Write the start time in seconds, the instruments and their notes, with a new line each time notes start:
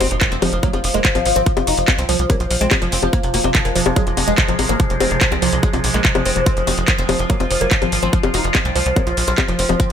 Already playing: synth drone F3 F4, impact
0.01 analog synth bass F1, oud C4, synth arpeggio sound F#4, open hi-hat, high bongo
0.11 analog synth bass F1, oud F3, closed hi-hat
0.21 synth arpeggio sound D#3, oud F3, kick, clap, closed hi-hat
0.32 analog synth bass F1, oud C4, closed hi-hat
0.42 analog synth bass F1, synth arpeggio sound F3, oud F3, open hi-hat, high bongo
0.53 analog synth bass F1, oud F3, closed hi-hat
0.63 synth arpeggio sound F#3, oud A#3, kick, closed hi-hat
0.73 analog synth bass F1, oud F3, synth arpeggio sound F4, closed hi-hat, high bongo
0.84 analog synth bass F1, oud F3, open hi-hat
0.94 analog synth bass F1, synth arpeggio sound G#3, oud A#3, closed hi-hat
1.05 oud F3, kick, clap, closed hi-hat
1.15 analog synth bass G#1, synth arpeggio sound F3, oud F3, closed hi-hat, high bongo
1.26 analog synth bass G#1, oud F3, open hi-hat
1.36 analog synth bass G#1, synth arpeggio sound F3, oud C4, closed hi-hat
1.46 oud F3, kick, closed hi-hat
1.57 analog synth bass F1, oud F3, closed hi-hat, high bongo
1.67 analog synth bass F1, oud D#4, synth arpeggio sound F#4, open hi-hat
1.78 analog synth bass F1, oud F3, closed hi-hat
1.88 synth arpeggio sound D#3, oud F3, kick, clap, closed hi-hat, high bongo
1.98 analog synth bass C2, oud C4, closed hi-hat
2.09 analog synth bass C2, oud F3, synth arpeggio sound F3, open hi-hat
2.19 analog synth bass C2, oud F3, closed hi-hat
2.30 synth arpeggio sound F#3, oud A#3, kick, closed hi-hat, high bongo
2.40 analog synth bass A#1, oud F3, synth arpeggio sound F4, closed hi-hat
2.50 analog synth bass A#1, oud F3, open hi-hat
2.61 analog synth bass A#1, synth arpeggio sound G#3, oud C4, closed hi-hat
2.71 oud F3, kick, clap, closed hi-hat, high bongo
2.82 analog synth bass F1, synth arpeggio sound F3, oud F3, closed hi-hat
2.92 analog synth bass F1, oud C4, open hi-hat
3.03 analog synth bass F1, synth arpeggio sound F3, oud F3, high bongo
3.13 synth arpeggio sound F3, synth drone G#3, oud A#3, kick, closed hi-hat
3.23 analog synth bass F1, oud C3, closed hi-hat
3.34 analog synth bass F1, oud A#3, synth arpeggio sound F#4, open hi-hat
3.44 analog synth bass F1, oud C3, closed hi-hat, high bongo
3.55 oud C3, synth arpeggio sound D#3, kick, clap, closed hi-hat
3.65 analog synth bass F1, oud A#3, closed hi-hat
3.75 analog synth bass F1, oud C3, synth arpeggio sound F3, open hi-hat
3.86 analog synth bass F1, oud C3, high bongo
3.96 synth arpeggio sound F#3, oud G#3, kick, closed hi-hat
4.07 analog synth bass F1, oud C3, synth arpeggio sound F4, closed hi-hat
4.17 analog synth bass F1, oud C3, open hi-hat, high bongo
4.28 analog synth bass F1, oud G#3, synth arpeggio sound G#3, closed hi-hat
4.38 oud C3, kick, clap, closed hi-hat
4.48 analog synth bass G#1, oud C3, synth arpeggio sound F3, closed hi-hat
4.59 analog synth bass G#1, oud C3, open hi-hat, high bongo
4.69 analog synth bass G#1, synth arpeggio sound F3, oud A#3, closed hi-hat
4.80 oud C3, synth arpeggio sound F3, kick, closed hi-hat
4.90 analog synth bass F1, oud C3, closed hi-hat
5.00 analog synth bass F1, oud C4, synth arpeggio sound F#4, open hi-hat, high bongo
5.11 analog synth bass F1, oud C3, closed hi-hat
5.21 oud C3, synth arpeggio sound D#3, kick, clap, closed hi-hat
5.32 analog synth bass C2, oud C4, closed hi-hat, high bongo
5.42 analog synth bass C2, oud C3, synth arpeggio sound F3, open hi-hat
5.53 analog synth bass C2, oud C3, closed hi-hat
5.63 synth arpeggio sound F#3, oud G#3, kick, closed hi-hat
5.73 analog synth bass A#1, oud C3, synth arpeggio sound F4, closed hi-hat, high bongo
5.84 analog synth bass A#1, oud C3, open hi-hat
5.94 analog synth bass A#1, synth arpeggio sound G#3, oud A#3, clap, closed hi-hat
6.05 oud C3, kick, clap, closed hi-hat
6.15 analog synth bass F1, oud C3, synth arpeggio sound F3, closed hi-hat, high bongo
6.25 analog synth bass F1, oud C4, open hi-hat
6.36 analog synth bass F1, oud C3, synth arpeggio sound F3, closed hi-hat
6.46 oud C4, synth drone F4, kick, closed hi-hat
6.57 analog synth bass F1, oud F3, closed hi-hat
6.67 analog synth bass F1, oud C4, synth arpeggio sound F#4, open hi-hat, high bongo
6.78 analog synth bass F1, oud F3, closed hi-hat
6.88 synth arpeggio sound D#3, oud F3, kick, clap, closed hi-hat
6.98 analog synth bass F1, oud C4, closed hi-hat
7.09 analog synth bass F1, synth arpeggio sound F3, oud F3, open hi-hat, high bongo
7.19 analog synth bass F1, oud F3, closed hi-hat
7.30 synth arpeggio sound F#3, oud A#3, kick, closed hi-hat
7.40 analog synth bass F1, oud F3, synth arpeggio sound F4, closed hi-hat, high bongo
7.51 analog synth bass F1, oud F3, open hi-hat
7.61 analog synth bass F1, synth arpeggio sound F#3, oud A#3, closed hi-hat
7.71 oud F3, kick, clap, closed hi-hat
7.82 analog synth bass G#1, synth arpeggio sound F3, oud F3, closed hi-hat, high bongo
7.92 analog synth bass G#1, oud F3, open hi-hat
8.03 analog synth bass G#1, synth arpeggio sound F3, oud C4, closed hi-hat
8.13 synth arpeggio sound F3, oud F3, kick, closed hi-hat
8.23 analog synth bass F1, oud F3, closed hi-hat, high bongo
8.34 analog synth bass F1, oud D#4, synth arpeggio sound F#4, open hi-hat
8.44 analog synth bass F1, oud F3, closed hi-hat
8.55 synth arpeggio sound D#3, oud F3, kick, clap, closed hi-hat, high bongo
8.65 analog synth bass C2, oud C4, closed hi-hat
8.75 analog synth bass C2, synth arpeggio sound F3, oud F3, open hi-hat
8.86 analog synth bass C2, oud F3, closed hi-hat
8.96 synth arpeggio sound F#3, oud A#3, kick, closed hi-hat, high bongo
9.07 analog synth bass A#1, oud F3, synth arpeggio sound F4, closed hi-hat
9.17 analog synth bass A#1, oud F3, open hi-hat
9.28 analog synth bass A#1, synth arpeggio sound F#3, oud C4, closed hi-hat
9.38 oud F3, kick, clap, closed hi-hat, high bongo
9.48 analog synth bass F1, synth arpeggio sound F3, oud F3, closed hi-hat
9.59 analog synth bass F1, oud C4, open hi-hat
9.69 analog synth bass F1, synth arpeggio sound F3, oud F3, closed hi-hat, high bongo
9.80 synth arpeggio sound F3, oud C4, synth drone A#4, kick, closed hi-hat